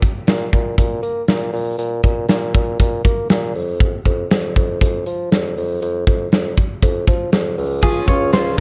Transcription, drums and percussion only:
0.02 kick medium
0.02 closed hi-hat medium
0.27 snare loud
0.27 closed hi-hat medium
0.53 kick medium
0.53 closed hi-hat medium
0.78 kick medium
0.78 closed hi-hat loud
1.03 closed hi-hat medium
1.28 snare loud
1.28 closed hi-hat medium
1.54 open hi-hat medium
1.79 closed hi-hat medium
2.03 kick medium
2.03 closed hi-hat medium
2.29 snare loud
2.29 closed hi-hat medium
2.54 kick medium
2.54 closed hi-hat medium
2.80 kick medium
2.80 closed hi-hat loud
3.05 kick medium
3.05 closed hi-hat medium
3.30 snare loud
3.30 closed hi-hat medium
3.55 open hi-hat medium
3.80 kick loud
3.80 closed hi-hat medium
4.05 kick medium
4.05 closed hi-hat medium
4.31 snare loud
4.31 closed hi-hat medium
4.56 kick medium
4.56 closed hi-hat medium
4.81 kick medium
4.81 closed hi-hat loud
5.06 closed hi-hat medium
5.32 snare loud
5.32 closed hi-hat medium
5.57 open hi-hat medium
5.82 closed hi-hat medium
6.07 kick medium
6.07 closed hi-hat medium
6.32 snare loud
6.32 closed hi-hat medium
6.57 kick medium
6.57 closed hi-hat medium
6.82 kick medium
6.82 closed hi-hat loud
7.07 kick medium
7.07 closed hi-hat medium
7.33 snare loud
7.33 closed hi-hat medium
7.58 open hi-hat medium
7.83 kick loud
7.83 closed hi-hat medium
8.08 kick medium
8.08 closed hi-hat medium
8.33 snare loud
8.33 closed hi-hat medium

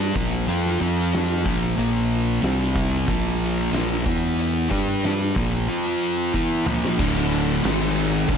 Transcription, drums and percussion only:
0.16 kick loud
0.16 closed hi-hat medium
0.48 closed hi-hat medium
0.66 snare soft
0.81 closed hi-hat medium
1.13 snare loud
1.13 closed hi-hat medium
1.46 kick loud
1.46 closed hi-hat medium
1.78 closed hi-hat medium
2.11 closed hi-hat medium
2.43 snare loud
2.43 closed hi-hat medium
2.76 kick medium
2.76 closed hi-hat medium
3.08 kick loud
3.08 closed hi-hat medium
3.26 snare soft
3.40 closed hi-hat medium
3.73 snare loud
3.73 closed hi-hat medium
4.06 kick loud
4.06 closed hi-hat medium
4.39 closed hi-hat medium
4.71 kick medium
4.71 closed hi-hat medium
5.03 snare loud
5.03 closed hi-hat medium
5.36 kick loud
5.36 closed hi-hat medium
6.34 kick medium
6.66 mid tom medium
6.85 snare medium
6.99 kick loud
6.99 crash loud
7.32 ride medium
7.64 snare loud
7.64 ride loud
7.96 ride medium
8.28 kick loud
8.28 ride loud

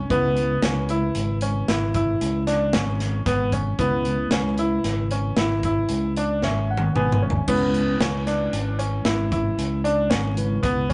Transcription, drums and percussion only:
0.10 kick medium
0.10 closed hi-hat medium
0.37 closed hi-hat soft
0.62 snare loud
0.62 closed hi-hat medium
0.89 closed hi-hat medium
1.15 closed hi-hat medium
1.41 closed hi-hat medium
1.68 snare medium
1.68 closed hi-hat medium
1.94 kick medium
1.94 closed hi-hat medium
2.21 closed hi-hat medium
2.47 snare soft
2.47 closed hi-hat medium
2.73 snare loud
2.73 closed hi-hat medium
3.00 snare soft
3.00 closed hi-hat medium
3.26 kick loud
3.26 snare soft
3.26 closed hi-hat medium
3.52 kick medium
3.52 closed hi-hat medium
3.79 kick medium
3.79 closed hi-hat medium
4.05 closed hi-hat medium
4.31 snare loud
4.31 closed hi-hat medium
4.58 closed hi-hat soft
4.84 snare soft
4.84 closed hi-hat medium
5.11 closed hi-hat medium
5.37 snare medium
5.37 closed hi-hat medium
5.63 kick medium
5.63 closed hi-hat medium
5.89 closed hi-hat medium
6.17 closed hi-hat medium
6.42 snare medium
6.77 high tom medium
6.96 mid tom medium
7.12 mid tom medium
7.30 floor tom medium
7.48 kick medium
7.48 crash medium
7.74 closed hi-hat medium
8.01 snare loud
8.01 closed hi-hat medium
8.27 snare soft
8.27 closed hi-hat soft
8.53 closed hi-hat medium
8.79 closed hi-hat medium
9.05 snare medium
9.05 closed hi-hat medium
9.32 kick medium
9.32 closed hi-hat medium
9.59 closed hi-hat medium
9.85 closed hi-hat medium
10.11 snare loud
10.11 closed hi-hat medium
10.37 closed hi-hat medium
10.63 kick medium
10.63 closed hi-hat medium
10.90 kick medium
10.90 closed hi-hat medium

